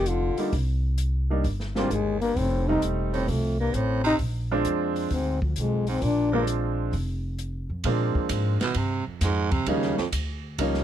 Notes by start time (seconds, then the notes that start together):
Already playing: F1
0.06 D3 F4, closed hi-hat
0.37 G3 A#3 D4 D#4, muted upright bass stroke, open hi-hat
0.53 C2, kick, open hi-hat
0.98 closed hi-hat
1.30 G3 A#3 D4 D#4
1.44 G1, kick, open hi-hat
1.60 snare
1.75 G#2 G3 A#3 C4 D4 F4, snare
1.90 G1 D#2 G#3, closed hi-hat
2.21 G2 A#3, open hi-hat
2.37 F1 A2 C4, kick, open hi-hat
2.68 C3 G3 A3 C4 D#4
2.82 E1, closed hi-hat
3.13 A2 C4, open hi-hat
3.28 C2 F2 A3, kick, open hi-hat
3.60 G2 A#3
3.73 A1 A2 C4, closed hi-hat
4.04 C3 D#4, open hi-hat
4.19 A#1, kick, open hi-hat
4.52 F3 G#3 C4 D4
4.65 F2, closed hi-hat
4.96 open hi-hat
5.11 D2 G#2 C4, kick, open hi-hat
5.42 D2 F3, kick
5.56 B1 F2, closed hi-hat
5.60 G#3
5.87 G#2 C4, open hi-hat
6.01 A#1 A#2 D4, kick, open hi-hat
6.31 G2 F3 G#3 A#3 C4 D4
6.47 closed hi-hat
6.93 F1, kick, open hi-hat
7.39 closed hi-hat
7.70 F2
7.84 A#2 F3 G#3 A#3 C4 D4, kick, ride
8.15 muted upright bass stroke, kick
8.29 G#2, kick, hi-hat pedal, ride
8.61 B2, muted upright bass stroke, snare, ride
8.74 G2 C3, kick, ride
9.07 F2, muted upright bass stroke
9.21 F2 G#2, kick, snare, hi-hat pedal, ride
9.51 C3, kick, ride
9.66 D#2 C#3 F3 G3 A#3 C#4 D#4, kick, ride
9.82 snare
9.97 F2, muted upright bass stroke, snare
10.12 D2, kick, hi-hat pedal, ride
10.58 C#2 F3 G3 A#3 C#4 D#4, kick, ride
10.74 snare